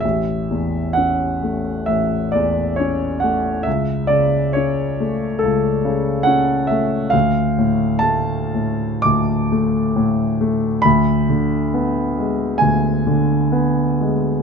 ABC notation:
X:1
M:4/4
L:1/8
Q:1/4=67
K:A
V:1 name="Grand piano"
e2 f2 e d c f | e d c2 A2 f e | =f2 a2 d'4 | b4 g2 z2 |]
V:2 name="Grand piano" clef=bass
A,,, E,, C A, A,,, E,, C A, | C,, C, C A, C,, C, C A, | D,, A,, A, A,, D,, A, A,, A, | D,, D, B, G, D,, D, B, G, |]